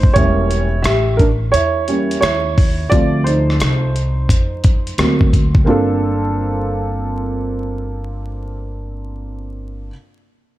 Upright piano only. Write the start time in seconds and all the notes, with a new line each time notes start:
Already playing: D#4 C5
0.13 G3 A#3 C#4 E4 C#5
0.82 G4 E5
1.17 D4 A#4
1.52 E4 C#5
1.88 G3 A#3 C#4
2.21 E4 C#5
2.90 F3 A3 C4 F4 D5
3.24 D#4 C5
4.98 F#3 A#3 C4
5.65 A#3 C4 D4
5.69 F4 A4